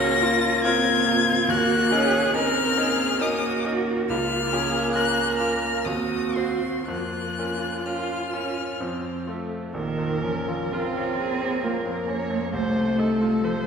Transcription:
Already playing: grand piano C#2 A#3 F4 A#4, viola C#4, cello F#4, violin A#6
0.21 grand piano A#3 F4 A#4, cello F4
0.64 grand piano A#3 F4 A#4, viola C4, cello F4, violin G#6
1.07 grand piano A#3 F4 A#4
1.48 grand piano D#2, viola A#3, cello F#4, violin F#6
1.91 grand piano C#4 D#4 A#4, viola C#4, cello G#4
2.34 viola C4, grand piano C#4 D#4 A#4, cello A#4, violin F6
2.77 grand piano C#4 D#4 A#4, cello G#4
3.21 viola A#3, grand piano C#4 D#4 A#4, cello F#4, violin D#6
3.65 grand piano C#4 D#4 A#4
4.09 grand piano C#2, viola A#3, cello F4, violin F6
4.53 grand piano C#4 F4 A#4, cello G#4
4.94 grand piano C#4 F4 A#4, cello A#4, violin F#6
5.38 grand piano C#4 F4 A#4, violin F6
5.85 grand piano D#2, viola C4, cello F#4, violin D#6
6.36 grand piano C4 F#4 C5, violin C6
6.88 grand piano F2, viola A#3, cello F4, violin F#6
7.39 grand piano C#4 F4 A#4
7.86 grand piano C#4 F4 A#4, viola F4, violin F6
8.33 grand piano C#4 F4 A#4, viola C#4
8.80 grand piano F2, viola C4
9.27 viola A3, grand piano C4 F4 A4
9.74 grand piano A#1, cello D#3, viola A#4, violin A#4
9.98 grand piano F2
10.23 cello F3, grand piano C#4
10.48 grand piano F4
10.73 cello C4, viola F4, grand piano A#4
10.96 grand piano C#5
11.18 viola G#4, grand piano A#4
11.41 grand piano C#5
11.64 cello A#3, grand piano F4, viola A#4
11.86 grand piano F2
12.08 grand piano C#4, viola C#5
12.30 grand piano F2
12.53 grand piano C2, cello A3, violin A4, viola C5
12.76 grand piano C3
12.98 grand piano D#4, viola A4
13.21 grand piano F4
13.44 cello F3, grand piano A4, viola C5

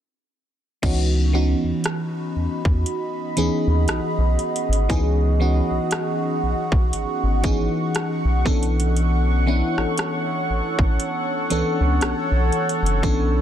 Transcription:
0.82 analog synth bass C#2, fm electric piano E3 B3 C#4 D#4 F#4, ambient pad F#4 D#5 F#5 B5, kick, closed hi-hat, crash
1.33 fm electric piano E3 B3 C#4 D#4 F#4
1.64 analog synth bass E2
1.84 cross-stick, closed hi-hat
2.36 analog synth bass E2
2.65 analog synth bass E2, kick
2.86 closed hi-hat
3.37 analog synth bass D#2, fm electric piano E3 B3 C#4 D#4 G#4, closed hi-hat
3.67 analog synth bass D#2
3.88 analog synth bass B1, cross-stick, closed hi-hat
4.18 analog synth bass B1
4.39 closed hi-hat
4.56 closed hi-hat
4.69 analog synth bass G#1, closed hi-hat
4.89 analog synth bass C#2, fm electric piano E3 B3 C#4 D#4 G#4, ambient pad C#6, kick, closed hi-hat
5.40 fm electric piano E3 B3 C#4 D#4 F#4
5.71 analog synth bass B1
5.91 cross-stick, closed hi-hat
6.43 analog synth bass B1
6.72 analog synth bass B1, kick
6.93 analog synth bass G#1, closed hi-hat
7.23 analog synth bass G#1
7.43 fm electric piano E3 B3 C#4 D#4 G#4, kick, closed hi-hat
7.95 cross-stick, closed hi-hat
8.25 analog synth bass B1
8.45 analog synth bass B1, fm electric piano E3 B3 C#4 D4 A4, ambient pad A4 C#5, kick, closed hi-hat
8.63 closed hi-hat
8.80 closed hi-hat
8.96 closed hi-hat
9.46 fm electric piano E3 B3 C#4 D4 E4
9.77 analog synth bass A1, cross-stick
9.97 cross-stick, closed hi-hat
10.50 analog synth bass A1
10.79 analog synth bass A1, kick
11.00 closed hi-hat
11.50 analog synth bass C#2, fm electric piano E3 B3 C#4 D4 A4, closed hi-hat
11.80 analog synth bass C#2
12.01 analog synth bass B1, cross-stick, closed hi-hat
12.31 analog synth bass B1
12.52 ambient pad B5, closed hi-hat
12.69 closed hi-hat
12.82 analog synth bass F#1
12.86 closed hi-hat
13.03 analog synth bass B1, fm electric piano E3 B3 C#4 D4 A4, kick, closed hi-hat

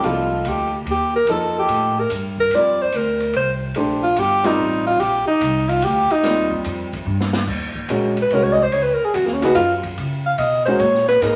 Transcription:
Already playing: grand piano G3 C4 F4 A#4
0.03 upright bass C2, grand piano F3 A#3 D#4 A4, alto saxophone F4, ride
0.44 upright bass D2, hi-hat pedal, ride
0.49 alto saxophone G4
0.85 upright bass D#2, ride
0.91 alto saxophone G4
1.16 alto saxophone A#4
1.27 upright bass F2, grand piano F3 A#3 D#4 A4, ride
1.31 alto saxophone A4
1.59 alto saxophone G4
1.68 upright bass A2, ride
2.00 alto saxophone A#4
2.10 upright bass G2, hi-hat pedal, ride
2.38 alto saxophone A#4, kick
2.51 upright bass F2, grand piano G3 C4 F4 A#4, alto saxophone D5, ride
2.82 alto saxophone C5
2.92 upright bass D2, alto saxophone A#4, hi-hat pedal, ride
3.20 ride
3.33 upright bass C2, alto saxophone C5, ride
3.75 upright bass A#1, grand piano A3 D4 G4 C5, ride
4.03 alto saxophone F4
4.16 upright bass G1, alto saxophone G4, hi-hat pedal, ride
4.44 grand piano G3 C4 F4 A#4, alto saxophone D#4, ride
4.58 upright bass A1
4.87 alto saxophone F4
5.00 upright bass A#1, alto saxophone G4, ride
5.27 alto saxophone D#4, muted upright bass stroke
5.41 upright bass C2, hi-hat pedal, ride
5.69 alto saxophone F4, ride
5.82 upright bass D2, alto saxophone G4, ride
6.10 alto saxophone D#4, muted upright bass stroke, ride
6.23 upright bass D#2, grand piano G3 C4 F4 A#4, snare, ride
6.52 kick
6.64 upright bass F2, hi-hat pedal, ride
6.93 kick, ride
7.06 upright bass G2
7.21 snare
7.33 snare
7.47 upright bass D#2, kick, crash
7.75 kick
7.88 upright bass A#1, grand piano G#3 C#4 F#4 A#4, hi-hat pedal, ride
8.17 ride
8.22 alto saxophone B4
8.30 upright bass C2, grand piano G#3 C#4 F#4 C#5, alto saxophone A#4, ride
8.43 alto saxophone C#5
8.53 alto saxophone D#5
8.63 alto saxophone C5
8.72 upright bass C#2, alto saxophone C#5, ride
8.83 alto saxophone B4
8.94 alto saxophone A#4
9.01 alto saxophone G#4, muted upright bass stroke
9.14 upright bass F2, alto saxophone F#4, hi-hat pedal, ride
9.26 upright bass D#2, alto saxophone A#3, snare
9.33 alto saxophone C#4
9.41 upright bass C#2, grand piano A#3 D#4 G#4 B4, alto saxophone F#4, snare, ride
9.55 upright bass F#2, alto saxophone F4, hi-hat pedal, ride
9.83 kick, ride
9.98 upright bass C#3, ride
10.26 alto saxophone F5
10.38 upright bass B2, alto saxophone D#5, hi-hat pedal, ride
10.65 grand piano G#3 C#4 F#4 A#4, alto saxophone C5, ride
10.79 upright bass A#2, alto saxophone C#5, ride
10.95 snare
11.08 alto saxophone B4, snare
11.21 upright bass G#2, grand piano A#3 D#4 G#4 B4, alto saxophone A#4, snare, ride

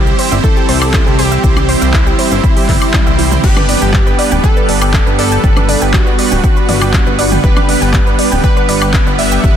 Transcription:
Already playing: analog synth bass C2, ambient pad E3 G3 C4 G4, supersaw synth G3 C4 E4 G4 C5, digital synth lead G4
0.07 synth pluck G4 G5, shaker
0.19 synth pluck C5 C6, open hi-hat
0.32 analog synth bass G1, synth pluck E5 E6, high conga, shaker
0.44 synth pluck E4 E5, digital synth lead A4, kick, shaker
0.57 synth pluck G4 G5, shaker
0.69 analog synth bass C2, synth pluck C5 C6, open hi-hat
0.82 synth pluck E5 E6, high woodblock, shaker
0.94 supersaw synth G3 E4 G4, synth pluck E4 E5, kick, clap, high conga, shaker
1.07 analog synth bass C2, synth pluck G4 G5, shaker
1.19 digital synth lead G4, synth pluck C5 C6, open hi-hat
1.32 synth pluck E5 E6, shaker
1.44 analog synth bass C2, supersaw synth G3 C4 E4 G4 C5, synth pluck E4 E5, kick, shaker
1.57 synth pluck G4 G5, mid tom, high conga, high woodblock, shaker
1.69 synth pluck C5 C6, open hi-hat
1.82 analog synth bass C2, synth pluck E5 E6, shaker
1.94 synth pluck E4, digital synth lead E4, kick, clap, shaker
2.07 synth pluck G4 G5, shaker
2.19 synth pluck C5 C6, open hi-hat
2.32 analog synth bass G1, synth pluck E5 E6, high conga, shaker
2.44 synth pluck E4, kick, swell, shaker
2.56 synth pluck G4 G5, open hi-hat, shaker
2.69 analog synth bass G1, supersaw synth G3 C4 E4 G4 C5, synth pluck E5 E6, kick, clap, open hi-hat, mid tom
2.82 synth pluck C6, high woodblock, shaker
2.94 synth pluck E4 E5, kick, clap, high conga, shaker
3.07 analog synth bass C2, synth pluck E5 E6, shaker
3.19 synth pluck E4 E5, open hi-hat
3.32 synth pluck E4 E5, mid tom, shaker
3.44 analog synth bass G1, ambient pad D3 G3 B3 D4, supersaw synth G3 B3 D4 G4 B4, digital synth lead G4, synth pluck G4 G5, synth texture F#5 F#6, kick, crash, shaker
3.57 synth pluck B4 B5, mid tom, high conga, high woodblock, shaker
3.69 synth pluck D5 D6, open hi-hat
3.82 analog synth bass G1, synth pluck G5 G6, shaker
3.94 synth pluck G4 G5, kick, clap, shaker
4.07 synth pluck B4 B5, shaker
4.19 synth pluck D5 D6, open hi-hat
4.32 analog synth bass D1, synth pluck G5 G6, high conga, shaker
4.44 synth pluck G4 G5, digital synth lead A4, kick, shaker
4.57 synth pluck B4 B5, shaker
4.69 analog synth bass G1, synth pluck D5 D6, open hi-hat
4.82 synth pluck G5 G6, high woodblock, shaker
4.94 supersaw synth G3 B3 D4 G4 B4, synth pluck G4, kick, clap, high conga, shaker
5.07 analog synth bass G1, synth pluck B4 B5, shaker
5.19 digital synth lead A4, synth pluck D5 D6, open hi-hat
5.32 synth pluck G5 G6, shaker
5.44 analog synth bass G1, supersaw synth G3 B3 D4 B4, synth pluck G4 G5, kick, shaker
5.57 synth pluck B4 B5, mid tom, high conga, high woodblock, shaker
5.69 synth pluck D5 D6, open hi-hat
5.82 analog synth bass G1, synth pluck G5 G6, shaker
5.94 digital synth lead F#4, synth pluck G4, kick, clap, shaker
6.07 synth pluck B4 B5, shaker
6.19 synth pluck D5 D6, open hi-hat
6.32 analog synth bass D1, synth pluck G5 G6, high conga, shaker
6.44 synth pluck G4 G5, kick, shaker
6.57 synth pluck B4 B5, shaker
6.69 analog synth bass G1, supersaw synth G3 B3 D4 B4, synth pluck D5 D6, open hi-hat, mid tom
6.82 synth pluck G5 G6, high woodblock, shaker
6.94 synth pluck G4, kick, clap, high conga, shaker
7.07 analog synth bass G1, synth pluck B4 B5, shaker
7.19 synth pluck D5 D6, open hi-hat
7.32 synth pluck G5 G6, mid tom, shaker
7.44 analog synth bass G1, supersaw synth G3 B3 D4 G4 B4, synth pluck G4 G5, digital synth lead B4, kick, shaker
7.57 synth pluck B4 B5, mid tom, high conga, high woodblock, shaker
7.69 synth pluck D5 D6, open hi-hat
7.82 analog synth bass G1, synth pluck G5 G6, shaker
7.94 synth pluck G4, kick, clap, shaker
8.07 synth pluck B4 B5, shaker
8.19 synth pluck D5 D6, open hi-hat
8.32 analog synth bass D1, synth pluck G5 G6, high conga, shaker
8.44 synth pluck G4 G5, digital synth lead B4, kick, shaker
8.57 synth pluck B4 B5, shaker
8.69 analog synth bass G1, synth pluck D5 D6, open hi-hat
8.82 synth pluck G5 G6, high woodblock, shaker
8.94 supersaw synth G3 B3 D4 G4 B4, synth pluck G4, kick, clap, high conga, shaker
9.07 analog synth bass G1, synth pluck B4 B5, shaker
9.19 synth pluck D5 D6, digital synth lead E5, open hi-hat
9.32 synth pluck G5 G6, shaker
9.44 analog synth bass G1, supersaw synth D4 G4 B4, synth pluck G4, kick, shaker

